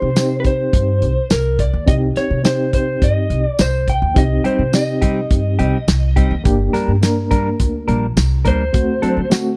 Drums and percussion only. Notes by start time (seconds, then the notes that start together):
0.16 snare, closed hi-hat, tambourine
0.44 kick, closed hi-hat
0.73 kick, closed hi-hat
1.02 closed hi-hat
1.30 snare, closed hi-hat, tambourine
1.59 kick, closed hi-hat
1.88 kick, closed hi-hat
2.16 snare, closed hi-hat
2.45 snare, closed hi-hat, tambourine
2.73 kick, closed hi-hat
3.02 kick, closed hi-hat
3.30 closed hi-hat
3.59 snare, closed hi-hat, tambourine
3.88 kick, closed hi-hat
4.16 kick, closed hi-hat
4.45 closed hi-hat
4.73 snare, closed hi-hat, tambourine
5.02 kick, closed hi-hat
5.31 kick, closed hi-hat
5.59 closed hi-hat
5.88 snare, closed hi-hat, tambourine
6.17 kick, closed hi-hat
6.45 kick, closed hi-hat
6.74 snare, closed hi-hat
7.03 snare, closed hi-hat, tambourine
7.31 kick, closed hi-hat
7.60 kick, closed hi-hat
7.88 closed hi-hat
8.17 snare, closed hi-hat, tambourine
8.45 kick, closed hi-hat
8.74 kick, closed hi-hat
9.03 closed hi-hat
9.31 snare, closed hi-hat, tambourine